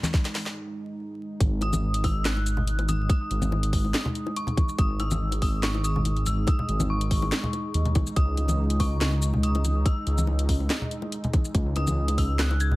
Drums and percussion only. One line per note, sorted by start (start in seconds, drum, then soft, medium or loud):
0.03 snare medium
0.03 closed hi-hat soft
0.03 high conga loud
0.03 shaker medium
0.14 kick loud
0.14 snare loud
0.25 snare medium
0.25 closed hi-hat medium
0.35 snare loud
0.35 open hi-hat loud
0.46 snare medium
1.40 kick loud
1.40 closed hi-hat medium
1.61 closed hi-hat medium
1.61 high bongo medium
1.73 closed hi-hat soft
1.73 high conga loud
1.73 shaker medium
1.94 closed hi-hat medium
2.04 kick medium
2.04 open hi-hat medium
2.04 high bongo medium
2.25 snare loud
2.25 clap loud
2.25 closed hi-hat medium
2.37 high bongo medium
2.46 closed hi-hat medium
2.46 shaker medium
2.57 low conga medium
2.67 closed hi-hat medium
2.79 closed hi-hat soft
2.79 high bongo medium
2.89 closed hi-hat medium
2.89 high conga medium
2.89 shaker medium
3.10 kick loud
3.10 closed hi-hat medium
3.10 high bongo medium
3.31 closed hi-hat medium
3.42 closed hi-hat soft
3.42 high conga medium
3.42 shaker medium
3.52 high bongo medium
3.63 closed hi-hat medium
3.73 kick medium
3.73 open hi-hat medium
3.85 high bongo soft
3.94 snare loud
3.94 clap medium
3.94 closed hi-hat medium
4.05 low conga medium
4.15 closed hi-hat medium
4.26 high bongo medium
4.36 closed hi-hat medium
4.47 closed hi-hat soft
4.47 low conga medium
4.57 kick loud
4.57 closed hi-hat medium
4.57 high bongo medium
4.57 high conga medium
4.69 shaker medium
4.79 kick loud
4.79 closed hi-hat medium
5.00 closed hi-hat medium
5.00 high bongo medium
5.11 closed hi-hat soft
5.11 high conga loud
5.11 shaker medium
5.32 closed hi-hat medium
5.32 high bongo medium
5.42 kick medium
5.42 open hi-hat medium
5.63 snare loud
5.63 clap medium
5.63 closed hi-hat medium
5.74 high bongo medium
5.84 closed hi-hat medium
5.84 shaker medium
5.96 low conga medium
6.05 closed hi-hat medium
6.05 high bongo medium
6.17 closed hi-hat soft
6.26 closed hi-hat medium
6.26 high conga medium
6.26 shaker medium
6.47 kick loud
6.47 closed hi-hat medium
6.47 high bongo medium
6.59 low conga medium
6.69 closed hi-hat medium
6.80 closed hi-hat soft
6.80 high bongo medium
6.80 high conga loud
6.80 shaker medium
7.01 closed hi-hat medium
7.11 kick medium
7.11 open hi-hat medium
7.22 high bongo medium
7.32 snare loud
7.32 clap medium
7.32 closed hi-hat medium
7.43 low conga medium
7.53 closed hi-hat soft
7.53 high bongo soft
7.74 closed hi-hat medium
7.85 closed hi-hat soft
7.85 low conga medium
7.95 kick loud
7.95 closed hi-hat medium
7.95 high bongo medium
7.95 high conga medium
8.07 shaker medium
8.16 kick loud
8.16 closed hi-hat medium
8.37 closed hi-hat medium
8.37 high bongo soft
8.48 closed hi-hat soft
8.48 high conga medium
8.48 shaker medium
8.70 closed hi-hat medium
8.80 kick medium
8.80 open hi-hat loud
8.80 high bongo medium
9.01 snare loud
9.01 clap medium
9.01 closed hi-hat medium
9.12 high bongo soft
9.22 closed hi-hat soft
9.22 shaker medium
9.34 low conga medium
9.43 closed hi-hat medium
9.55 closed hi-hat soft
9.55 high bongo medium
9.65 closed hi-hat medium
9.65 high conga medium
9.65 shaker medium
9.86 kick loud
9.86 closed hi-hat medium
9.86 high bongo soft
10.07 closed hi-hat medium
10.18 closed hi-hat soft
10.18 high conga medium
10.18 shaker medium
10.27 high bongo medium
10.39 closed hi-hat medium
10.49 kick medium
10.49 open hi-hat loud
10.60 high bongo soft
10.70 snare loud
10.70 clap medium
10.70 closed hi-hat medium
10.82 low conga medium
10.91 closed hi-hat medium
11.02 high bongo medium
11.12 closed hi-hat medium
11.24 closed hi-hat soft
11.24 low conga medium
11.33 kick loud
11.33 closed hi-hat medium
11.33 high bongo medium
11.33 high conga medium
11.45 shaker medium
11.55 kick loud
11.55 closed hi-hat medium
11.76 closed hi-hat medium
11.76 high bongo medium
11.87 closed hi-hat soft
11.87 high conga medium
11.87 shaker medium
12.08 closed hi-hat medium
12.08 high bongo medium
12.18 kick medium
12.18 open hi-hat loud
12.39 snare loud
12.39 clap medium
12.39 closed hi-hat medium
12.51 high bongo medium
12.60 closed hi-hat medium
12.60 shaker medium
12.71 low conga medium